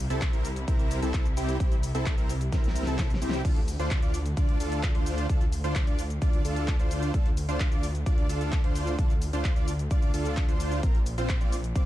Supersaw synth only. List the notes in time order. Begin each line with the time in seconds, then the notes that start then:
0.10 C4 E4 A4
0.33 C4 E4 A#4
0.68 C4 E4 A#4
1.02 C4 E4 A4
1.37 C4 E4 G4
1.60 C4 E4 G4
1.95 C4 E4 A4
2.18 C4 E4 A#4
2.52 C4 E4 A#4
2.87 C4 E4 A4
3.22 C4 E4 G4
3.45 D4 F4 A4
3.79 D4 F4 C5
4.03 D4 F4 D5
4.37 D4 F4 D5
4.60 D4 F4 A4
4.95 D4 F4 C5
5.29 D4 F4 A4
5.64 D4 F4 C5
5.87 D4 F4 D5
6.22 D4 F4 D5
6.45 D4 F4 A4
6.79 D4 F4 C5
7.14 D4 F4 A4
7.49 D4 F4 C5
7.72 D4 F4 D5
8.06 D4 F4 D5
8.29 D4 F4 A4
8.64 D4 F4 C5
8.99 D4 F4 A4
9.33 D4 F4 C5
9.56 D4 F4 D5
9.91 D4 F4 D5
10.14 D4 F4 A4
10.49 D4 F4 C5
10.83 C4 F4 A#4
11.18 C4 F4 C5
11.41 C4 F4 D5
11.76 C4 F4 D5